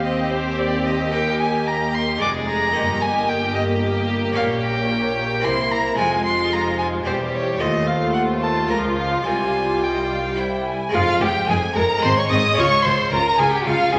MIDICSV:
0, 0, Header, 1, 8, 480
1, 0, Start_track
1, 0, Tempo, 539568
1, 1010, Time_signature, 3, 2, 24, 8
1, 6766, Tempo, 555042
1, 9646, Tempo, 542495
1, 12347, End_track
2, 0, Start_track
2, 0, Title_t, "Violin section"
2, 0, Program_c, 0, 48
2, 0, Note_on_c, 0, 72, 48
2, 983, Note_off_c, 0, 72, 0
2, 1017, Note_on_c, 0, 75, 48
2, 1969, Note_on_c, 0, 74, 47
2, 1976, Note_off_c, 0, 75, 0
2, 2445, Note_on_c, 0, 75, 58
2, 2448, Note_off_c, 0, 74, 0
2, 3853, Note_off_c, 0, 75, 0
2, 3866, Note_on_c, 0, 73, 57
2, 4816, Note_off_c, 0, 73, 0
2, 4837, Note_on_c, 0, 72, 55
2, 7675, Note_off_c, 0, 72, 0
2, 7713, Note_on_c, 0, 70, 44
2, 8197, Note_off_c, 0, 70, 0
2, 8204, Note_on_c, 0, 72, 43
2, 8638, Note_off_c, 0, 72, 0
2, 8688, Note_on_c, 0, 75, 56
2, 8910, Note_off_c, 0, 75, 0
2, 8934, Note_on_c, 0, 77, 48
2, 9171, Note_off_c, 0, 77, 0
2, 9176, Note_on_c, 0, 79, 54
2, 9414, Note_off_c, 0, 79, 0
2, 9417, Note_on_c, 0, 80, 60
2, 9653, Note_off_c, 0, 80, 0
2, 9656, Note_on_c, 0, 77, 94
2, 9877, Note_off_c, 0, 77, 0
2, 9906, Note_on_c, 0, 79, 81
2, 10134, Note_off_c, 0, 79, 0
2, 10138, Note_on_c, 0, 80, 91
2, 10375, Note_off_c, 0, 80, 0
2, 10379, Note_on_c, 0, 82, 89
2, 10611, Note_off_c, 0, 82, 0
2, 10614, Note_on_c, 0, 84, 95
2, 10733, Note_off_c, 0, 84, 0
2, 10742, Note_on_c, 0, 85, 85
2, 10850, Note_on_c, 0, 87, 94
2, 10857, Note_off_c, 0, 85, 0
2, 11089, Note_on_c, 0, 85, 101
2, 11091, Note_off_c, 0, 87, 0
2, 11330, Note_off_c, 0, 85, 0
2, 11330, Note_on_c, 0, 84, 90
2, 11562, Note_on_c, 0, 82, 92
2, 11570, Note_off_c, 0, 84, 0
2, 11800, Note_off_c, 0, 82, 0
2, 11801, Note_on_c, 0, 80, 91
2, 11925, Note_off_c, 0, 80, 0
2, 11931, Note_on_c, 0, 79, 84
2, 12050, Note_off_c, 0, 79, 0
2, 12050, Note_on_c, 0, 77, 86
2, 12284, Note_off_c, 0, 77, 0
2, 12288, Note_on_c, 0, 80, 87
2, 12347, Note_off_c, 0, 80, 0
2, 12347, End_track
3, 0, Start_track
3, 0, Title_t, "Violin"
3, 0, Program_c, 1, 40
3, 43, Note_on_c, 1, 75, 50
3, 279, Note_on_c, 1, 72, 58
3, 292, Note_off_c, 1, 75, 0
3, 520, Note_on_c, 1, 74, 66
3, 533, Note_off_c, 1, 72, 0
3, 769, Note_on_c, 1, 75, 54
3, 782, Note_off_c, 1, 74, 0
3, 1002, Note_off_c, 1, 75, 0
3, 1007, Note_on_c, 1, 79, 71
3, 1241, Note_off_c, 1, 79, 0
3, 1246, Note_on_c, 1, 80, 64
3, 1493, Note_on_c, 1, 82, 59
3, 1507, Note_off_c, 1, 80, 0
3, 1729, Note_on_c, 1, 84, 67
3, 1743, Note_off_c, 1, 82, 0
3, 1961, Note_off_c, 1, 84, 0
3, 1967, Note_on_c, 1, 86, 75
3, 2038, Note_off_c, 1, 86, 0
3, 2205, Note_on_c, 1, 82, 69
3, 2682, Note_on_c, 1, 80, 73
3, 2695, Note_off_c, 1, 82, 0
3, 2925, Note_on_c, 1, 79, 65
3, 2938, Note_off_c, 1, 80, 0
3, 3154, Note_off_c, 1, 79, 0
3, 3159, Note_on_c, 1, 75, 61
3, 3230, Note_off_c, 1, 75, 0
3, 3874, Note_on_c, 1, 77, 78
3, 3946, Note_off_c, 1, 77, 0
3, 4113, Note_on_c, 1, 79, 70
3, 4843, Note_on_c, 1, 84, 82
3, 4856, Note_off_c, 1, 79, 0
3, 5078, Note_on_c, 1, 82, 74
3, 5092, Note_off_c, 1, 84, 0
3, 5317, Note_off_c, 1, 82, 0
3, 5322, Note_on_c, 1, 80, 76
3, 5555, Note_off_c, 1, 80, 0
3, 5561, Note_on_c, 1, 84, 76
3, 5808, Note_on_c, 1, 82, 65
3, 5821, Note_off_c, 1, 84, 0
3, 6031, Note_off_c, 1, 82, 0
3, 6037, Note_on_c, 1, 80, 73
3, 6108, Note_off_c, 1, 80, 0
3, 6280, Note_on_c, 1, 72, 66
3, 6351, Note_off_c, 1, 72, 0
3, 6522, Note_on_c, 1, 73, 66
3, 6764, Note_on_c, 1, 75, 70
3, 6777, Note_off_c, 1, 73, 0
3, 6993, Note_on_c, 1, 77, 65
3, 7006, Note_off_c, 1, 75, 0
3, 7220, Note_off_c, 1, 77, 0
3, 7225, Note_on_c, 1, 78, 55
3, 7294, Note_off_c, 1, 78, 0
3, 7468, Note_on_c, 1, 81, 62
3, 7705, Note_off_c, 1, 81, 0
3, 7717, Note_on_c, 1, 82, 65
3, 7786, Note_off_c, 1, 82, 0
3, 7960, Note_on_c, 1, 77, 59
3, 8195, Note_off_c, 1, 77, 0
3, 8199, Note_on_c, 1, 80, 71
3, 8692, Note_on_c, 1, 79, 52
3, 8705, Note_off_c, 1, 80, 0
3, 9171, Note_off_c, 1, 79, 0
3, 9646, Note_on_c, 1, 65, 76
3, 9717, Note_off_c, 1, 65, 0
3, 9885, Note_on_c, 1, 67, 76
3, 9956, Note_off_c, 1, 67, 0
3, 10136, Note_on_c, 1, 68, 67
3, 10207, Note_off_c, 1, 68, 0
3, 10373, Note_on_c, 1, 70, 77
3, 10444, Note_off_c, 1, 70, 0
3, 10618, Note_on_c, 1, 72, 82
3, 10730, Note_off_c, 1, 72, 0
3, 10735, Note_on_c, 1, 73, 70
3, 10783, Note_off_c, 1, 73, 0
3, 10847, Note_on_c, 1, 75, 77
3, 11085, Note_off_c, 1, 75, 0
3, 11094, Note_on_c, 1, 73, 89
3, 11333, Note_on_c, 1, 72, 78
3, 11347, Note_off_c, 1, 73, 0
3, 11574, Note_on_c, 1, 70, 69
3, 11587, Note_off_c, 1, 72, 0
3, 11804, Note_off_c, 1, 70, 0
3, 11809, Note_on_c, 1, 68, 76
3, 11857, Note_off_c, 1, 68, 0
3, 11938, Note_on_c, 1, 67, 71
3, 12051, Note_on_c, 1, 65, 77
3, 12064, Note_off_c, 1, 67, 0
3, 12286, Note_on_c, 1, 68, 71
3, 12300, Note_off_c, 1, 65, 0
3, 12347, Note_off_c, 1, 68, 0
3, 12347, End_track
4, 0, Start_track
4, 0, Title_t, "Violin section"
4, 0, Program_c, 2, 48
4, 0, Note_on_c, 2, 67, 52
4, 1966, Note_on_c, 2, 68, 49
4, 1968, Note_off_c, 2, 67, 0
4, 2447, Note_off_c, 2, 68, 0
4, 2452, Note_on_c, 2, 67, 58
4, 4841, Note_on_c, 2, 64, 51
4, 4846, Note_off_c, 2, 67, 0
4, 5323, Note_off_c, 2, 64, 0
4, 5328, Note_on_c, 2, 65, 60
4, 6282, Note_on_c, 2, 67, 52
4, 6288, Note_off_c, 2, 65, 0
4, 6757, Note_off_c, 2, 67, 0
4, 6767, Note_on_c, 2, 65, 57
4, 9165, Note_on_c, 2, 64, 42
4, 9166, Note_off_c, 2, 65, 0
4, 9473, Note_off_c, 2, 64, 0
4, 9650, Note_on_c, 2, 65, 79
4, 9874, Note_off_c, 2, 65, 0
4, 9892, Note_on_c, 2, 67, 75
4, 10130, Note_on_c, 2, 68, 69
4, 10132, Note_off_c, 2, 67, 0
4, 10201, Note_off_c, 2, 68, 0
4, 10374, Note_on_c, 2, 70, 78
4, 10608, Note_off_c, 2, 70, 0
4, 10612, Note_on_c, 2, 72, 79
4, 10660, Note_off_c, 2, 72, 0
4, 10744, Note_on_c, 2, 73, 72
4, 10855, Note_on_c, 2, 75, 78
4, 10856, Note_off_c, 2, 73, 0
4, 11083, Note_on_c, 2, 73, 81
4, 11089, Note_off_c, 2, 75, 0
4, 11322, Note_off_c, 2, 73, 0
4, 11326, Note_on_c, 2, 72, 73
4, 11396, Note_off_c, 2, 72, 0
4, 11564, Note_on_c, 2, 70, 73
4, 11799, Note_on_c, 2, 68, 80
4, 11801, Note_off_c, 2, 70, 0
4, 11919, Note_on_c, 2, 67, 70
4, 11924, Note_off_c, 2, 68, 0
4, 12044, Note_off_c, 2, 67, 0
4, 12045, Note_on_c, 2, 65, 78
4, 12286, Note_off_c, 2, 65, 0
4, 12292, Note_on_c, 2, 68, 78
4, 12347, Note_off_c, 2, 68, 0
4, 12347, End_track
5, 0, Start_track
5, 0, Title_t, "Harpsichord"
5, 0, Program_c, 3, 6
5, 0, Note_on_c, 3, 39, 40
5, 0, Note_on_c, 3, 63, 38
5, 0, Note_on_c, 3, 72, 38
5, 964, Note_off_c, 3, 63, 0
5, 970, Note_off_c, 3, 72, 0
5, 991, Note_on_c, 3, 63, 37
5, 1004, Note_on_c, 3, 70, 40
5, 1934, Note_off_c, 3, 63, 0
5, 1940, Note_off_c, 3, 39, 0
5, 1940, Note_off_c, 3, 70, 0
5, 1941, Note_on_c, 3, 56, 41
5, 1956, Note_on_c, 3, 62, 44
5, 1970, Note_on_c, 3, 68, 42
5, 1985, Note_on_c, 3, 41, 47
5, 2419, Note_off_c, 3, 56, 0
5, 2419, Note_on_c, 3, 58, 40
5, 2421, Note_off_c, 3, 41, 0
5, 2427, Note_off_c, 3, 62, 0
5, 2432, Note_on_c, 3, 63, 43
5, 2434, Note_off_c, 3, 68, 0
5, 2441, Note_on_c, 3, 67, 44
5, 2457, Note_on_c, 3, 43, 44
5, 3834, Note_off_c, 3, 58, 0
5, 3840, Note_off_c, 3, 63, 0
5, 3844, Note_off_c, 3, 67, 0
5, 3847, Note_on_c, 3, 58, 43
5, 3852, Note_off_c, 3, 43, 0
5, 3862, Note_on_c, 3, 61, 43
5, 3875, Note_on_c, 3, 67, 42
5, 3891, Note_on_c, 3, 46, 45
5, 4797, Note_off_c, 3, 58, 0
5, 4804, Note_off_c, 3, 61, 0
5, 4810, Note_on_c, 3, 58, 45
5, 4811, Note_off_c, 3, 67, 0
5, 4812, Note_off_c, 3, 46, 0
5, 4821, Note_on_c, 3, 60, 42
5, 4834, Note_on_c, 3, 64, 45
5, 4848, Note_on_c, 3, 48, 49
5, 5288, Note_off_c, 3, 60, 0
5, 5289, Note_on_c, 3, 56, 43
5, 5291, Note_off_c, 3, 48, 0
5, 5292, Note_off_c, 3, 58, 0
5, 5299, Note_on_c, 3, 60, 44
5, 5305, Note_off_c, 3, 64, 0
5, 5315, Note_on_c, 3, 65, 43
5, 5327, Note_on_c, 3, 41, 47
5, 6239, Note_off_c, 3, 56, 0
5, 6244, Note_off_c, 3, 60, 0
5, 6252, Note_off_c, 3, 41, 0
5, 6252, Note_off_c, 3, 65, 0
5, 6258, Note_on_c, 3, 60, 42
5, 6272, Note_on_c, 3, 67, 43
5, 6284, Note_on_c, 3, 40, 48
5, 6732, Note_off_c, 3, 40, 0
5, 6739, Note_off_c, 3, 60, 0
5, 6747, Note_off_c, 3, 67, 0
5, 6748, Note_on_c, 3, 60, 41
5, 6758, Note_on_c, 3, 69, 41
5, 6772, Note_on_c, 3, 39, 44
5, 7675, Note_off_c, 3, 60, 0
5, 7680, Note_off_c, 3, 69, 0
5, 7681, Note_off_c, 3, 39, 0
5, 7691, Note_on_c, 3, 65, 38
5, 7706, Note_on_c, 3, 70, 38
5, 7719, Note_on_c, 3, 37, 42
5, 8155, Note_off_c, 3, 65, 0
5, 8165, Note_off_c, 3, 37, 0
5, 8166, Note_on_c, 3, 65, 35
5, 8179, Note_off_c, 3, 70, 0
5, 8179, Note_on_c, 3, 72, 35
5, 8194, Note_on_c, 3, 36, 40
5, 9121, Note_off_c, 3, 65, 0
5, 9128, Note_off_c, 3, 72, 0
5, 9145, Note_on_c, 3, 64, 37
5, 9159, Note_on_c, 3, 72, 37
5, 9437, Note_off_c, 3, 36, 0
5, 9608, Note_on_c, 3, 56, 56
5, 9621, Note_on_c, 3, 60, 52
5, 9623, Note_off_c, 3, 64, 0
5, 9630, Note_off_c, 3, 72, 0
5, 9631, Note_on_c, 3, 68, 56
5, 9647, Note_on_c, 3, 41, 58
5, 9865, Note_off_c, 3, 41, 0
5, 9884, Note_on_c, 3, 41, 60
5, 10103, Note_off_c, 3, 41, 0
5, 10123, Note_on_c, 3, 41, 57
5, 10343, Note_off_c, 3, 41, 0
5, 10370, Note_on_c, 3, 41, 53
5, 10557, Note_off_c, 3, 56, 0
5, 10568, Note_off_c, 3, 60, 0
5, 10568, Note_on_c, 3, 56, 53
5, 10574, Note_off_c, 3, 68, 0
5, 10582, Note_on_c, 3, 60, 59
5, 10587, Note_off_c, 3, 41, 0
5, 10595, Note_on_c, 3, 68, 56
5, 10609, Note_on_c, 3, 44, 65
5, 10827, Note_off_c, 3, 44, 0
5, 10855, Note_on_c, 3, 44, 57
5, 11045, Note_off_c, 3, 56, 0
5, 11056, Note_on_c, 3, 56, 56
5, 11063, Note_off_c, 3, 60, 0
5, 11066, Note_on_c, 3, 61, 58
5, 11069, Note_off_c, 3, 68, 0
5, 11070, Note_off_c, 3, 44, 0
5, 11082, Note_on_c, 3, 65, 56
5, 11096, Note_on_c, 3, 49, 59
5, 11310, Note_off_c, 3, 49, 0
5, 11333, Note_on_c, 3, 49, 61
5, 11548, Note_off_c, 3, 49, 0
5, 11577, Note_on_c, 3, 49, 56
5, 11789, Note_off_c, 3, 49, 0
5, 11817, Note_on_c, 3, 49, 57
5, 12029, Note_off_c, 3, 49, 0
5, 12057, Note_on_c, 3, 49, 63
5, 12269, Note_off_c, 3, 49, 0
5, 12297, Note_on_c, 3, 49, 57
5, 12347, Note_off_c, 3, 49, 0
5, 12347, Note_off_c, 3, 56, 0
5, 12347, Note_off_c, 3, 61, 0
5, 12347, Note_off_c, 3, 65, 0
5, 12347, End_track
6, 0, Start_track
6, 0, Title_t, "Viola section"
6, 0, Program_c, 4, 48
6, 0, Note_on_c, 4, 60, 50
6, 1008, Note_off_c, 4, 60, 0
6, 1013, Note_on_c, 4, 58, 49
6, 1954, Note_off_c, 4, 58, 0
6, 1973, Note_on_c, 4, 56, 48
6, 2447, Note_on_c, 4, 58, 52
6, 2450, Note_off_c, 4, 56, 0
6, 5316, Note_on_c, 4, 56, 52
6, 5323, Note_off_c, 4, 58, 0
6, 6263, Note_off_c, 4, 56, 0
6, 6285, Note_on_c, 4, 55, 47
6, 6764, Note_on_c, 4, 57, 51
6, 6768, Note_off_c, 4, 55, 0
6, 7692, Note_off_c, 4, 57, 0
6, 7712, Note_on_c, 4, 53, 44
6, 8196, Note_off_c, 4, 53, 0
6, 8199, Note_on_c, 4, 55, 51
6, 9449, Note_off_c, 4, 55, 0
6, 9642, Note_on_c, 4, 56, 66
6, 9713, Note_off_c, 4, 56, 0
6, 9886, Note_on_c, 4, 56, 57
6, 9957, Note_off_c, 4, 56, 0
6, 10131, Note_on_c, 4, 56, 52
6, 10202, Note_off_c, 4, 56, 0
6, 10369, Note_on_c, 4, 56, 51
6, 10440, Note_off_c, 4, 56, 0
6, 10616, Note_on_c, 4, 60, 60
6, 10687, Note_off_c, 4, 60, 0
6, 10853, Note_on_c, 4, 60, 59
6, 10924, Note_off_c, 4, 60, 0
6, 11093, Note_on_c, 4, 65, 69
6, 11164, Note_off_c, 4, 65, 0
6, 11334, Note_on_c, 4, 65, 56
6, 11405, Note_off_c, 4, 65, 0
6, 11575, Note_on_c, 4, 65, 62
6, 11646, Note_off_c, 4, 65, 0
6, 11816, Note_on_c, 4, 65, 57
6, 11887, Note_off_c, 4, 65, 0
6, 12051, Note_on_c, 4, 65, 54
6, 12122, Note_off_c, 4, 65, 0
6, 12290, Note_on_c, 4, 65, 61
6, 12347, Note_off_c, 4, 65, 0
6, 12347, End_track
7, 0, Start_track
7, 0, Title_t, "Cello section"
7, 0, Program_c, 5, 48
7, 0, Note_on_c, 5, 39, 46
7, 1969, Note_on_c, 5, 41, 48
7, 1972, Note_off_c, 5, 39, 0
7, 2439, Note_off_c, 5, 41, 0
7, 2452, Note_on_c, 5, 43, 54
7, 3886, Note_off_c, 5, 43, 0
7, 3886, Note_on_c, 5, 46, 54
7, 4844, Note_on_c, 5, 48, 55
7, 4845, Note_off_c, 5, 46, 0
7, 5324, Note_off_c, 5, 48, 0
7, 5327, Note_on_c, 5, 41, 53
7, 6268, Note_off_c, 5, 41, 0
7, 6289, Note_on_c, 5, 40, 52
7, 6760, Note_off_c, 5, 40, 0
7, 6767, Note_on_c, 5, 39, 52
7, 7694, Note_off_c, 5, 39, 0
7, 7719, Note_on_c, 5, 37, 48
7, 8200, Note_off_c, 5, 37, 0
7, 8200, Note_on_c, 5, 36, 50
7, 9449, Note_off_c, 5, 36, 0
7, 9651, Note_on_c, 5, 41, 73
7, 9722, Note_off_c, 5, 41, 0
7, 9892, Note_on_c, 5, 41, 65
7, 9963, Note_off_c, 5, 41, 0
7, 10134, Note_on_c, 5, 41, 69
7, 10204, Note_off_c, 5, 41, 0
7, 10375, Note_on_c, 5, 41, 65
7, 10446, Note_off_c, 5, 41, 0
7, 10616, Note_on_c, 5, 44, 66
7, 10687, Note_off_c, 5, 44, 0
7, 10859, Note_on_c, 5, 44, 67
7, 10930, Note_off_c, 5, 44, 0
7, 11096, Note_on_c, 5, 49, 71
7, 11167, Note_off_c, 5, 49, 0
7, 11335, Note_on_c, 5, 49, 70
7, 11406, Note_off_c, 5, 49, 0
7, 11573, Note_on_c, 5, 49, 69
7, 11644, Note_off_c, 5, 49, 0
7, 11806, Note_on_c, 5, 49, 64
7, 11877, Note_off_c, 5, 49, 0
7, 12045, Note_on_c, 5, 49, 65
7, 12116, Note_off_c, 5, 49, 0
7, 12282, Note_on_c, 5, 49, 69
7, 12347, Note_off_c, 5, 49, 0
7, 12347, End_track
8, 0, Start_track
8, 0, Title_t, "Double bass section"
8, 0, Program_c, 6, 48
8, 0, Note_on_c, 6, 39, 51
8, 1974, Note_off_c, 6, 39, 0
8, 1975, Note_on_c, 6, 29, 50
8, 2442, Note_off_c, 6, 29, 0
8, 2452, Note_on_c, 6, 31, 52
8, 3886, Note_off_c, 6, 31, 0
8, 3889, Note_on_c, 6, 34, 61
8, 4843, Note_on_c, 6, 36, 52
8, 4847, Note_off_c, 6, 34, 0
8, 5324, Note_off_c, 6, 36, 0
8, 5331, Note_on_c, 6, 29, 59
8, 6270, Note_off_c, 6, 29, 0
8, 6287, Note_on_c, 6, 28, 52
8, 6759, Note_off_c, 6, 28, 0
8, 6779, Note_on_c, 6, 39, 55
8, 7700, Note_off_c, 6, 39, 0
8, 7720, Note_on_c, 6, 37, 47
8, 8200, Note_off_c, 6, 37, 0
8, 8202, Note_on_c, 6, 36, 45
8, 9450, Note_off_c, 6, 36, 0
8, 9653, Note_on_c, 6, 29, 73
8, 9724, Note_off_c, 6, 29, 0
8, 9888, Note_on_c, 6, 29, 66
8, 9958, Note_off_c, 6, 29, 0
8, 10129, Note_on_c, 6, 29, 69
8, 10200, Note_off_c, 6, 29, 0
8, 10375, Note_on_c, 6, 29, 69
8, 10445, Note_off_c, 6, 29, 0
8, 10615, Note_on_c, 6, 32, 69
8, 10686, Note_off_c, 6, 32, 0
8, 10853, Note_on_c, 6, 32, 75
8, 10924, Note_off_c, 6, 32, 0
8, 11096, Note_on_c, 6, 37, 73
8, 11166, Note_off_c, 6, 37, 0
8, 11334, Note_on_c, 6, 37, 75
8, 11404, Note_off_c, 6, 37, 0
8, 11574, Note_on_c, 6, 37, 70
8, 11645, Note_off_c, 6, 37, 0
8, 11817, Note_on_c, 6, 37, 61
8, 11888, Note_off_c, 6, 37, 0
8, 12057, Note_on_c, 6, 37, 72
8, 12128, Note_off_c, 6, 37, 0
8, 12295, Note_on_c, 6, 37, 70
8, 12347, Note_off_c, 6, 37, 0
8, 12347, End_track
0, 0, End_of_file